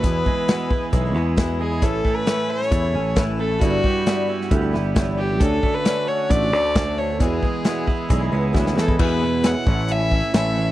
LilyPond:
<<
  \new Staff \with { instrumentName = "Fiddle" } { \time 4/4 \key e \mixolydian \tempo 4 = 134 b'2~ b'8 r4 gis'8 | a'8. b'8. cis''4. r8 a'8 | fis'2 r4. g'8 | a'8. b'8. cis''8 d''4. cis''8 |
gis'2. r8 a'8 | b'4 fis''4 e''4 e''4 | }
  \new Staff \with { instrumentName = "Upright piano" } { \time 4/4 \key e \mixolydian r1 | <e' a' cis''>4 <e' a' cis''>4 <e' a' cis''>8 <e' a' cis''>8 <e' a' cis''>4 | <g e' b'>4 <g e' b'>4 <e' g' a'>8 <e' g' b'>8 <e' g' cis''>4 | <d' fis' cis''>4 <fis' cis''>4 <d' fis' cis''>8 <d' fis' cis''>8 <fis' e''>4 |
<e' gis' b'>4 <e' gis' d''>4 <e' gis' d''>8 <e' gis' b'>8 <e' gis' cis''>4 | <e' gis' b'>4 <e' gis' cis''>8 <e' a' cis''>4~ <e' a' cis''>16 r16 <e' a' cis''>4 | }
  \new Staff \with { instrumentName = "Twelve-string acoustic guitar" } { \time 4/4 \key e \mixolydian <e, b, e gis b e'>8 <e gis b e'>8 <e, b, e gis b e'>8 <e gis b e'>8 <e gis b e'>16 <e gis b e'>16 <e gis b e'>8 <e, b, e gis b e'>8 <e gis b e'>16 <e gis b e'>16 | <a, e a cis' e'>8 <e a cis' e'>8 <a, e a cis' e'>8 <e a cis' e'>8 <e a cis' e'>16 <a cis' e'>16 <e a cis' e'>8 <a, e a cis' e'>8 <e a cis' e'>16 <a cis' e'>16 | <g, d e g b e'>8 <e g b e'>8 <g, d e g b e'>8 <e g b e'>8 <e g b e'>16 <e g b e'>16 <e g b e'>8 <g, d e g b e'>8 <e g b e'>16 <e g b e'>16 | <d a cis' fis'>8 <d a cis' fis'>8 <d a cis' fis'>8 <d a cis' fis'>8 <d a cis' fis'>16 <a cis' fis'>16 <d a cis' fis'>8 <d a cis' fis'>8 <d a cis' fis'>16 <a cis' fis'>16 |
<e, b, e gis b e'>8 <e gis b e'>8 <e, b, e gis b e'>8 <e gis b e'>8 <e gis b e'>16 <e gis b e'>16 <e gis b e'>8 <e, b, e gis b e'>8 <e gis b e'>16 <e gis b e'>16 | <e, b, e gis b e'>8 <e gis b e'>8 <e, b, e gis b e'>16 <e gis b e'>16 <a, e a cis' e'>8. <a cis' e'>16 <e a cis' e'>8 <a, e a cis' e'>8 <e a cis' e'>16 <a cis' e'>16 | }
  \new Staff \with { instrumentName = "Clean electric guitar" } { \clef bass \time 4/4 \key e \mixolydian e,8 gis8 b8 e'8 gis8 b8 e8 gis8 | a,8 a8 cis'8 e'8 a8 cis'8 e8 a8 | g,8 g8 b8 e'8 g8 b8 e8 g8 | d8 a8 cis'8 fis'8 a8 cis'8 d8 a8 |
e,8 gis8 b8 e'8 gis8 b8 e8 gis8 | e,8 b,8 e8 a,8 cis'8 e'8 cis'8 e8 | }
  \new Staff \with { instrumentName = "Picked electric bass" } { \clef bass \time 4/4 \key e \mixolydian e,8 r4. b,,8 e,4. | a,,8 r4. e,8 a,,4. | g,,8 r4. d,8 g,,4. | d,8 r4. a,,8 d,4. |
e,8 r4. b,,8 cis,8 d,8 e,8 | e,4. a,,4. a,,4 | }
  \new DrumStaff \with { instrumentName = "Drums" } \drummode { \time 4/4 <hh bd>8 bd8 <hh sn>8 bd8 <hh bd>4 <hh bd sn>4 | <hh bd>8 bd8 <hh sn>8. sn16 <hh bd>4 <hh bd sn>4 | <hh bd>8 bd8 <hh sn>8. sn16 <hh bd>8 sn8 <hh bd sn>4 | <hh bd>8 bd8 <hh sn>4 <hh bd>8 sn8 <hh bd sn>4 |
<hh bd>8 bd8 <hh sn>8 bd8 <hh bd>4 <bd sn>16 sn16 sn16 bd16 | <cymc bd>4 <hh sn>8 bd8 hh8 bd8 <hh sn>4 | }
>>